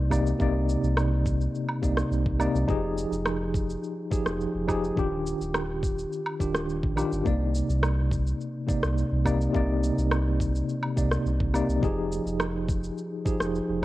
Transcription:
Already playing: sub bass C2, tine electric piano C3 A#3 D#4 D5
0.10 tine electric piano C3 A#3 D#4 D5, kick, low woodblock, shaker
0.27 shaker
0.39 sub bass C2, tine electric piano C3 A#3 D#4 D5, kick, shaker
0.69 shaker
0.83 sub bass C2, shaker
0.97 cross-stick, low woodblock, shaker
1.26 kick, shaker
1.41 shaker
1.55 shaker
1.69 low woodblock
1.82 sub bass C2, tine electric piano C3 A#3 D#4 D5, kick, shaker
1.97 cross-stick, shaker
2.11 sub bass C2, shaker
2.26 kick
2.39 tine electric piano C3 A#3 D#4 D5, low woodblock, shaker
2.55 sub bass C2, shaker
2.67 sub bass F1, tine electric piano F3 D#4 G4 G#4, kick, shaker
2.98 shaker
3.11 sub bass F1, shaker
3.26 cross-stick, low woodblock, shaker
3.54 kick, shaker
3.70 shaker
3.84 shaker
4.11 tine electric piano F3 D#4 G4 G#4, kick, shaker
4.26 sub bass F1, cross-stick, shaker
4.41 shaker
4.54 sub bass F1
4.67 tine electric piano F3 D#4 G4 G#4, kick, low woodblock, shaker
4.84 shaker
4.95 sub bass D#1, tine electric piano D#3 D4 F4 G4, kick, shaker
5.27 shaker
5.41 sub bass D#1, shaker
5.54 cross-stick, low woodblock, shaker
5.83 kick, shaker
5.98 shaker
6.13 shaker
6.26 low woodblock
6.39 sub bass D#1, tine electric piano D#3 D4 F4 G4, kick, shaker
6.54 cross-stick, shaker
6.69 shaker
6.83 sub bass A#1, kick
6.96 tine electric piano D#3 D4 F4 G4, low woodblock, shaker
7.12 sub bass G1, shaker
7.24 sub bass C2, tine electric piano C3 A#3 D#4 D5, kick, shaker
7.55 shaker
7.69 sub bass C2, shaker
7.83 cross-stick, low woodblock, shaker
8.11 kick, shaker
8.27 shaker
8.41 shaker
8.67 tine electric piano C3 A#3 D#4 D5, kick, shaker
8.83 sub bass C2, cross-stick, shaker
8.98 shaker
9.12 sub bass C2
9.25 tine electric piano C3 A#3 D#4 D5, kick, low woodblock, shaker
9.41 shaker
9.53 sub bass C2, tine electric piano C3 A#3 D#4 D5, kick, shaker
9.84 shaker
9.98 sub bass C2, shaker
10.11 cross-stick, low woodblock, shaker
10.40 kick, shaker
10.55 shaker
10.69 shaker
10.83 low woodblock
10.97 sub bass C2, tine electric piano C3 A#3 D#4 D5, kick, shaker
11.12 cross-stick, shaker
11.26 sub bass C2, shaker
11.40 kick
11.54 tine electric piano C3 A#3 D#4 D5, low woodblock, shaker
11.69 sub bass C2, shaker
11.81 sub bass F1, tine electric piano F3 D#4 G4 G#4, kick, shaker
12.12 shaker
12.26 sub bass F1, shaker
12.40 cross-stick, low woodblock, shaker
12.69 kick, shaker
12.84 shaker
12.98 shaker
13.25 tine electric piano F3 D#4 G4 G#4, kick, shaker
13.40 sub bass F1, cross-stick, shaker
13.55 shaker
13.69 sub bass F1

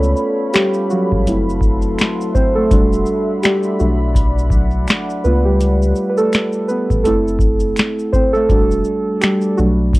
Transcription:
Already playing: sub bass C#2, synth keys A3 B3 C#4 F4 A4 C#5, ambient pad A4 C#5 F5 B5
0.03 shaker
0.17 shaker
0.54 synth keys G3 G4, finger snap, snare, closed hi-hat, shaker
0.74 shaker
0.90 synth keys F#3 F#4, shaker
1.12 sub bass A1, kick
1.26 sub bass F#1, synth keys A3 C4 E4, ambient pad A4 E5 F#5 C6, closed hi-hat, shaker
1.50 shaker
1.61 sub bass F#1, kick, shaker
1.82 shaker
1.98 finger snap, snare, closed hi-hat, shaker
2.01 finger snap
2.21 shaker
2.34 synth keys C4 C5, kick, shaker
2.55 synth keys A3 A4
2.71 sub bass E1, synth keys G3 D4 F#4, ambient pad D5 B5, kick, closed hi-hat, shaker
2.93 shaker
3.06 shaker
3.43 synth keys G3 G4, finger snap, snare, closed hi-hat, shaker
3.45 finger snap
3.63 shaker
3.79 sub bass B1, synth keys F#3 A3 D4 F#4, ambient pad A4 F#5, shaker
4.15 kick, closed hi-hat, shaker
4.38 shaker
4.50 sub bass B1, kick, shaker
4.71 shaker
4.88 finger snap, snare, closed hi-hat, shaker
4.90 finger snap
5.10 shaker
5.24 sub bass C#2, synth keys A3 B3 F4 B4, shaker
5.45 synth keys G3 G4
5.61 closed hi-hat, shaker
5.82 shaker
5.95 shaker
6.09 synth keys B4
6.17 synth keys A3 A4, shaker
6.33 finger snap, snare, closed hi-hat, shaker
6.35 finger snap
6.53 shaker
6.68 synth keys B3 B4, shaker
6.90 sub bass A1, kick, shaker
7.04 sub bass F#1, synth keys A3 C4 E4 A4, closed hi-hat, shaker
7.28 shaker
7.39 sub bass F#1, kick, shaker
7.60 shaker
7.76 finger snap, snare, closed hi-hat, shaker
7.80 finger snap
7.99 shaker
8.13 synth keys C4 C5, kick, shaker
8.33 synth keys A3 A4, shaker
8.49 sub bass E1, synth keys G3 D4 F#4, ambient pad B5, kick, closed hi-hat, shaker
8.71 shaker
8.85 shaker
9.21 synth keys G3 G4, finger snap, snare, closed hi-hat, shaker
9.24 finger snap
9.41 shaker
9.57 sub bass B1, synth keys F#3 A3 D4 F#4, ambient pad A4 D5 F#5, shaker
9.93 kick, closed hi-hat, shaker

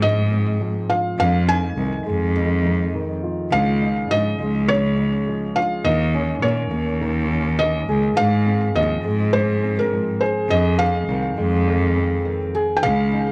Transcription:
Already playing: cello G#2, steel-string acoustic guitar F3 G#3 C4
0.02 steel-string acoustic guitar G#2, felt piano D#5
0.32 steel-string acoustic guitar C4
0.61 steel-string acoustic guitar F3
0.90 steel-string acoustic guitar F4, felt piano F5
1.19 steel-string acoustic guitar F2, cello F2, felt piano F5
1.48 steel-string acoustic guitar D#4, felt piano G#5
1.77 cello C2, steel-string acoustic guitar D#3
2.06 cello F2, steel-string acoustic guitar G#3
2.36 steel-string acoustic guitar F2
2.65 steel-string acoustic guitar D#4
2.94 steel-string acoustic guitar D#3
3.23 steel-string acoustic guitar F4
3.52 cello C#2, steel-string acoustic guitar C#3, felt piano F5
3.82 steel-string acoustic guitar D#4
4.11 cello G#2, steel-string acoustic guitar F3, felt piano D#5
4.40 cello C#2, steel-string acoustic guitar G#3
4.68 steel-string acoustic guitar C#3, felt piano C#5
4.98 steel-string acoustic guitar D#4
5.27 steel-string acoustic guitar F3
5.56 steel-string acoustic guitar F4, felt piano F5
5.85 cello D#2, steel-string acoustic guitar D#3, felt piano D#5
6.14 steel-string acoustic guitar C#4
6.42 cello A#2, steel-string acoustic guitar A#3, felt piano C#5
6.72 cello D#2, steel-string acoustic guitar A#3
7.01 steel-string acoustic guitar D#3
7.31 steel-string acoustic guitar C#4
7.59 steel-string acoustic guitar A#3, felt piano D#5
7.89 cello C#2, steel-string acoustic guitar G#4
8.17 cello G#2, steel-string acoustic guitar G#2, felt piano F5
8.47 steel-string acoustic guitar C4
8.76 cello D#2, steel-string acoustic guitar F3, felt piano D#5
9.05 cello G#2, steel-string acoustic guitar G#3
9.33 steel-string acoustic guitar G#2, felt piano C5
9.63 steel-string acoustic guitar C4
9.79 felt piano A#4
9.93 steel-string acoustic guitar F3
10.21 steel-string acoustic guitar G#4, felt piano C5
10.50 cello F2, steel-string acoustic guitar F2, felt piano D#5
10.79 steel-string acoustic guitar C4, felt piano F5
11.09 cello C2, steel-string acoustic guitar D#3
11.38 cello F2, steel-string acoustic guitar G#3
11.67 steel-string acoustic guitar F2
11.96 steel-string acoustic guitar C4
12.25 steel-string acoustic guitar D#3
12.55 steel-string acoustic guitar G#4
12.77 felt piano G5
12.83 cello C#2, steel-string acoustic guitar C#3, felt piano F5
13.13 steel-string acoustic guitar D#4

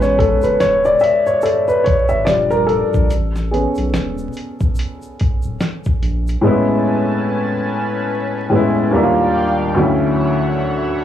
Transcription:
Already playing: sub bass A1, upright piano G#3 B3 C#4 B4
0.02 upright piano C#5, snare, shaker
0.19 upright piano A4, kick, closed hi-hat
0.42 sub bass F#1, upright piano B4, closed hi-hat, shaker
0.60 sub bass E1, upright piano C#5, snare, closed hi-hat, shaker
0.85 upright piano D5, shaker
1.00 upright piano E5, shaker
1.04 closed hi-hat
1.26 upright piano C#5, shaker
1.42 upright piano A4, shaker
1.46 closed hi-hat
1.68 upright piano B4, shaker
1.84 upright piano C#5, kick, closed hi-hat
2.09 sub bass G#1, upright piano E5, shaker
2.25 sub bass D#1, upright piano F3 G3 D4 D5, snare, closed hi-hat, shaker
2.50 upright piano A#4, shaker
2.67 upright piano A4, closed hi-hat
2.94 sub bass A#1, kick, shaker
3.10 sub bass A1, closed hi-hat, shaker
3.36 snare, shaker
3.51 upright piano B3 C#4 G#4, closed hi-hat
3.75 sub bass B1, closed hi-hat, shaker
3.94 sub bass E1, snare, closed hi-hat, shaker
4.18 shaker
4.33 closed hi-hat, shaker
4.60 kick, shaker
4.75 closed hi-hat, shaker
5.02 shaker
5.19 kick, closed hi-hat
5.42 sub bass D1, shaker
5.61 snare, closed hi-hat, shaker
5.84 kick, shaker
6.02 sub bass A#1, closed hi-hat
6.27 closed hi-hat, shaker
6.41 upright piano A2 G#3 B3, analog synth pad C#4 B4 G#5 A5
6.46 upright piano C4 E4
6.52 upright piano C#4
8.49 upright piano A2 G#3 B3
8.54 upright piano C#4 E4
8.91 upright piano D#2 G3 A#3, analog synth pad D#3 D5 F5 G5
8.95 upright piano D4 E4
9.03 upright piano F4
9.75 upright piano D2 F#3 A3, analog synth pad D3 C#5 E5 F#5
9.79 upright piano C#4 E4

